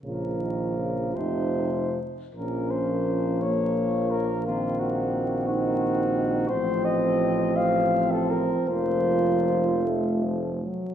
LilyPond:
<<
  \new Staff \with { instrumentName = "Flugelhorn" } { \time 6/8 \key bes \minor \tempo 4. = 54 bes'4. c''4 r8 | bes'8 c''4 des''4 bes'8 | f'8 ges'4 ges'4. | c''8 ees''4 f''8. a'16 bes'8 |
c''4. r4. | }
  \new Staff \with { instrumentName = "French horn section" } { \time 6/8 \key bes \minor f'4. ees'4 r8 | des'4. bes4.~ | bes4. ees'4. | c'2. |
f'2~ f'16 r8. | }
  \new Staff \with { instrumentName = "Euphonium" } { \time 6/8 \key bes \minor f4. f4 r8 | bes2. | c'2. | c'4. c'4. |
bes4. a4 r8 | }
  \new Staff \with { instrumentName = "Euphonium" } { \clef bass \time 6/8 \key bes \minor des8 ees8 des8 c4 r8 | f2. | ees2. | f4. f4. |
f4. a8 f8 ges8 | }
  \new Staff \with { instrumentName = "Tuba" } { \clef bass \time 6/8 \key bes \minor bes,,4. f,,4 r8 | bes,,2.~ | bes,,2. | a,,2. |
f,,2~ f,,8 r8 | }
>>